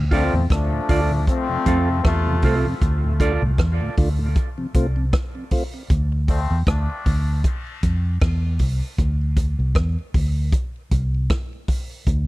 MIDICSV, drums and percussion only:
0, 0, Header, 1, 2, 480
1, 0, Start_track
1, 0, Tempo, 771208
1, 1752, Time_signature, 4, 2, 24, 8
1, 7638, End_track
2, 0, Start_track
2, 0, Title_t, "Drums"
2, 72, Note_on_c, 9, 36, 88
2, 75, Note_on_c, 9, 46, 49
2, 134, Note_off_c, 9, 36, 0
2, 137, Note_off_c, 9, 46, 0
2, 313, Note_on_c, 9, 36, 107
2, 317, Note_on_c, 9, 44, 68
2, 322, Note_on_c, 9, 37, 107
2, 375, Note_off_c, 9, 36, 0
2, 379, Note_off_c, 9, 44, 0
2, 384, Note_off_c, 9, 37, 0
2, 553, Note_on_c, 9, 46, 70
2, 555, Note_on_c, 9, 36, 101
2, 616, Note_off_c, 9, 46, 0
2, 618, Note_off_c, 9, 36, 0
2, 793, Note_on_c, 9, 36, 107
2, 794, Note_on_c, 9, 44, 63
2, 855, Note_off_c, 9, 36, 0
2, 856, Note_off_c, 9, 44, 0
2, 1032, Note_on_c, 9, 42, 69
2, 1035, Note_on_c, 9, 36, 84
2, 1095, Note_off_c, 9, 42, 0
2, 1097, Note_off_c, 9, 36, 0
2, 1274, Note_on_c, 9, 36, 126
2, 1274, Note_on_c, 9, 37, 104
2, 1336, Note_off_c, 9, 36, 0
2, 1337, Note_off_c, 9, 37, 0
2, 1507, Note_on_c, 9, 46, 76
2, 1512, Note_on_c, 9, 36, 92
2, 1569, Note_off_c, 9, 46, 0
2, 1574, Note_off_c, 9, 36, 0
2, 1751, Note_on_c, 9, 44, 61
2, 1752, Note_on_c, 9, 36, 103
2, 1813, Note_off_c, 9, 44, 0
2, 1815, Note_off_c, 9, 36, 0
2, 1991, Note_on_c, 9, 36, 91
2, 1993, Note_on_c, 9, 42, 70
2, 2053, Note_off_c, 9, 36, 0
2, 2055, Note_off_c, 9, 42, 0
2, 2230, Note_on_c, 9, 36, 104
2, 2237, Note_on_c, 9, 37, 117
2, 2293, Note_off_c, 9, 36, 0
2, 2299, Note_off_c, 9, 37, 0
2, 2473, Note_on_c, 9, 46, 74
2, 2475, Note_on_c, 9, 36, 103
2, 2535, Note_off_c, 9, 46, 0
2, 2537, Note_off_c, 9, 36, 0
2, 2711, Note_on_c, 9, 44, 64
2, 2713, Note_on_c, 9, 36, 112
2, 2773, Note_off_c, 9, 44, 0
2, 2775, Note_off_c, 9, 36, 0
2, 2953, Note_on_c, 9, 42, 65
2, 2954, Note_on_c, 9, 36, 88
2, 3015, Note_off_c, 9, 42, 0
2, 3016, Note_off_c, 9, 36, 0
2, 3193, Note_on_c, 9, 36, 127
2, 3195, Note_on_c, 9, 37, 115
2, 3256, Note_off_c, 9, 36, 0
2, 3257, Note_off_c, 9, 37, 0
2, 3428, Note_on_c, 9, 46, 75
2, 3432, Note_on_c, 9, 36, 94
2, 3491, Note_off_c, 9, 46, 0
2, 3495, Note_off_c, 9, 36, 0
2, 3670, Note_on_c, 9, 44, 62
2, 3672, Note_on_c, 9, 36, 112
2, 3733, Note_off_c, 9, 44, 0
2, 3735, Note_off_c, 9, 36, 0
2, 3911, Note_on_c, 9, 36, 93
2, 3911, Note_on_c, 9, 46, 51
2, 3973, Note_off_c, 9, 36, 0
2, 3973, Note_off_c, 9, 46, 0
2, 4150, Note_on_c, 9, 36, 118
2, 4152, Note_on_c, 9, 44, 62
2, 4157, Note_on_c, 9, 37, 112
2, 4213, Note_off_c, 9, 36, 0
2, 4214, Note_off_c, 9, 44, 0
2, 4219, Note_off_c, 9, 37, 0
2, 4392, Note_on_c, 9, 46, 80
2, 4394, Note_on_c, 9, 36, 96
2, 4455, Note_off_c, 9, 46, 0
2, 4457, Note_off_c, 9, 36, 0
2, 4631, Note_on_c, 9, 44, 62
2, 4632, Note_on_c, 9, 36, 107
2, 4693, Note_off_c, 9, 44, 0
2, 4694, Note_off_c, 9, 36, 0
2, 4872, Note_on_c, 9, 42, 70
2, 4874, Note_on_c, 9, 36, 89
2, 4934, Note_off_c, 9, 42, 0
2, 4936, Note_off_c, 9, 36, 0
2, 5113, Note_on_c, 9, 36, 127
2, 5113, Note_on_c, 9, 37, 114
2, 5175, Note_off_c, 9, 36, 0
2, 5176, Note_off_c, 9, 37, 0
2, 5346, Note_on_c, 9, 46, 81
2, 5351, Note_on_c, 9, 36, 88
2, 5408, Note_off_c, 9, 46, 0
2, 5413, Note_off_c, 9, 36, 0
2, 5590, Note_on_c, 9, 44, 60
2, 5592, Note_on_c, 9, 36, 102
2, 5652, Note_off_c, 9, 44, 0
2, 5654, Note_off_c, 9, 36, 0
2, 5829, Note_on_c, 9, 42, 74
2, 5830, Note_on_c, 9, 36, 95
2, 5891, Note_off_c, 9, 42, 0
2, 5892, Note_off_c, 9, 36, 0
2, 6069, Note_on_c, 9, 36, 108
2, 6073, Note_on_c, 9, 37, 117
2, 6131, Note_off_c, 9, 36, 0
2, 6136, Note_off_c, 9, 37, 0
2, 6312, Note_on_c, 9, 46, 74
2, 6313, Note_on_c, 9, 36, 112
2, 6374, Note_off_c, 9, 46, 0
2, 6375, Note_off_c, 9, 36, 0
2, 6548, Note_on_c, 9, 44, 63
2, 6551, Note_on_c, 9, 36, 110
2, 6610, Note_off_c, 9, 44, 0
2, 6613, Note_off_c, 9, 36, 0
2, 6792, Note_on_c, 9, 42, 72
2, 6793, Note_on_c, 9, 36, 88
2, 6855, Note_off_c, 9, 36, 0
2, 6855, Note_off_c, 9, 42, 0
2, 7033, Note_on_c, 9, 36, 126
2, 7034, Note_on_c, 9, 37, 111
2, 7095, Note_off_c, 9, 36, 0
2, 7097, Note_off_c, 9, 37, 0
2, 7270, Note_on_c, 9, 46, 74
2, 7272, Note_on_c, 9, 36, 95
2, 7332, Note_off_c, 9, 46, 0
2, 7334, Note_off_c, 9, 36, 0
2, 7509, Note_on_c, 9, 44, 62
2, 7511, Note_on_c, 9, 36, 97
2, 7571, Note_off_c, 9, 44, 0
2, 7573, Note_off_c, 9, 36, 0
2, 7638, End_track
0, 0, End_of_file